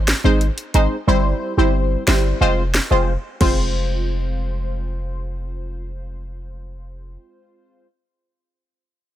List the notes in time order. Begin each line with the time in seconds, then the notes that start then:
Already playing: G#1
0.08 snare, closed hi-hat
0.24 G#1 G#3 C4 D#4 C5
0.41 closed hi-hat
0.58 closed hi-hat
0.74 G#1 G#3 C4 D#4 C5, closed hi-hat
1.07 G1 G3 C4 E4 C5
1.57 G1 G3 C4 E4 C5
2.07 G1 G3 C4 E4 C5, snare
2.41 F1 G#3 C4 F4 C5
2.74 snare
2.91 F1 G#3 C4 F4 C5
3.40 F1 G#3 C4 F4 C5, kick, crash